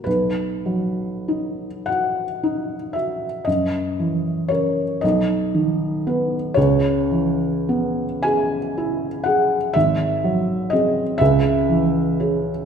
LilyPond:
<<
  \new Staff \with { instrumentName = "Felt piano" } { \time 6/8 \key b \major \tempo 4. = 39 b'4. fis''4 e''8 | dis''4 cis''8 dis''4. | cis''4. gis''4 fis''8 | e''4 dis''8 e''4. | }
  \new Staff \with { instrumentName = "Felt piano" } { \time 6/8 \key b \major b,,8 fis8 dis'8 fis'8 dis'8 fis'8 | fis,8 e8 <cis' ais'>8 b,,8 dis8 <b b'>8 | cis,8 e8 b8 gis'8 e'8 gis'8 | gis,,8 fis8 <bis gis'>8 cis,8 e8 <cis' gis'>8 | }
>>